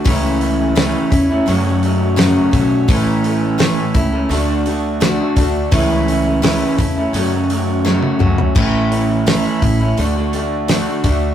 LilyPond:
<<
  \new Staff \with { instrumentName = "Clean electric guitar" } { \time 4/4 \key a \major \tempo 4 = 85 <cis e a cis' e'>8 <e a cis' e'>16 <a cis' e'>16 <cis e a cis' e'>16 <a cis' e'>8 <a cis' e'>16 <fis, cis fis a cis' fis'>16 <fis a cis' fis'>16 <fis a cis' fis'>8 <fis, cis fis a cis' fis'>16 <fis a cis' fis'>16 <fis a cis' fis'>8 | <a, e a cis' a'>8 <e a cis' a'>16 <a cis' a'>16 <a, e a cis' a'>16 <a cis' a'>8 <a cis' a'>16 <d a d' fis'>16 <a d' fis'>16 <d a d' fis'>8 <d a d' fis'>16 <a d' fis'>16 <d a d' fis'>8 | <cis e a cis' e'>8 <e a cis' e'>16 <a cis' e'>16 <cis e a cis' e'>16 <a cis' e'>8 <a cis' e'>16 <fis, cis fis a cis' fis'>16 <fis a cis' fis'>16 <fis a cis' fis'>8 <fis, cis fis a cis' fis'>16 <fis a cis' fis'>16 <fis a cis' fis'>8 | <a, e a cis' e'>8 <e a cis' e'>16 <a cis' e'>16 <a, e a cis' e'>16 <a cis' e'>8 <a cis' e'>16 <d a d' fis'>16 <a d' fis'>16 <d a d' fis'>8 <d a d' fis'>16 <a d' fis'>16 <d a d' fis'>8 | }
  \new Staff \with { instrumentName = "Steel-string acoustic guitar" } { \time 4/4 \key a \major <cis e a cis' e'>4 <cis e a cis' e'>8 <a cis' e'>8 <fis a cis' fis'>4 <fis, cis fis a cis' fis'>8 <fis a cis' fis'>8 | <a, e a cis' e'>4 <a, e a cis' e'>8 <a cis' e'>8 <d a d' fis'>4 <d a d' fis'>8 <a d' fis'>8 | <cis e a cis' e'>4 <cis e a cis' e'>8 <a cis' e'>8 <fis a cis' fis'>4 <fis, cis fis a cis' fis'>8 <fis a cis' fis'>8 | <a, e a cis' e'>4 <a, e a cis' e'>8 <a cis' e'>8 <d a d' fis'>4 <d a d' fis'>8 <a d' fis'>8 | }
  \new Staff \with { instrumentName = "Upright bass" } { \clef bass \time 4/4 \key a \major cis,4. e,8 fis,4. b,,8 | a,,4. cis,8 d,4. d,8 | cis,4. e,8 fis,4. cis,8 | a,,4. a,,8 d,4. d,8 | }
  \new DrumStaff \with { instrumentName = "Drums" } \drummode { \time 4/4 <hho bd>8 hho8 <hho sn>8 <hho bd>8 hho8 hho8 <hho sn>8 <hho bd>8 | <hho bd>8 hho8 <hho sn>8 <hho bd>8 <hho sn>8 hho8 <hho sn>8 <hho bd>8 | <hho bd>8 hho8 <hho sn>8 <hho bd>8 hho8 hho8 sn16 tommh16 toml16 tomfh16 | <cymc bd>8 hho8 <hho sn>8 <hho bd>8 hho8 hho8 <hho sn>8 <hho bd>8 | }
>>